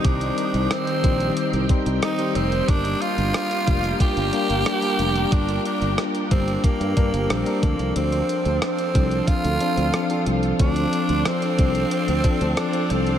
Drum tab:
HH |xxxxxxxxxxxxxxxx|xxxxxxxxxxxxxxxx|xxxxxxxxxxxxxxxx|xxxxxxxxxxxxxxxx|
SD |----r-------r---|----r-------r---|----r-------r---|----r-------r---|
BD |o-----o---o-----|o-----o-o-------|o-----o-o-o---o-|------o-o-------|

HH |xxxxxxxxxxxxxxxx|
SD |----r-------r---|
BD |o-----o---o-----|